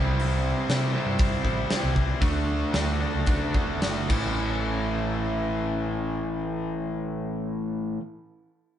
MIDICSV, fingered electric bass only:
0, 0, Header, 1, 2, 480
1, 0, Start_track
1, 0, Tempo, 498339
1, 179, Time_signature, 4, 2, 24, 8
1, 1621, Tempo, 525394
1, 3061, Tempo, 561272
1, 4021, Tempo, 580271
1, 7667, End_track
2, 0, Start_track
2, 0, Title_t, "Fingered electric bass"
2, 0, Program_c, 0, 33
2, 0, Note_on_c, 0, 36, 87
2, 495, Note_off_c, 0, 36, 0
2, 662, Note_on_c, 0, 48, 82
2, 936, Note_off_c, 0, 48, 0
2, 1019, Note_on_c, 0, 43, 74
2, 1297, Note_off_c, 0, 43, 0
2, 1389, Note_on_c, 0, 33, 83
2, 1572, Note_off_c, 0, 33, 0
2, 1758, Note_on_c, 0, 36, 84
2, 2022, Note_off_c, 0, 36, 0
2, 2109, Note_on_c, 0, 38, 82
2, 2471, Note_off_c, 0, 38, 0
2, 2581, Note_on_c, 0, 38, 84
2, 2859, Note_off_c, 0, 38, 0
2, 2952, Note_on_c, 0, 37, 76
2, 3223, Note_off_c, 0, 37, 0
2, 3306, Note_on_c, 0, 28, 75
2, 3515, Note_off_c, 0, 28, 0
2, 3548, Note_on_c, 0, 30, 73
2, 3759, Note_off_c, 0, 30, 0
2, 3777, Note_on_c, 0, 33, 81
2, 6973, Note_off_c, 0, 33, 0
2, 7667, End_track
0, 0, End_of_file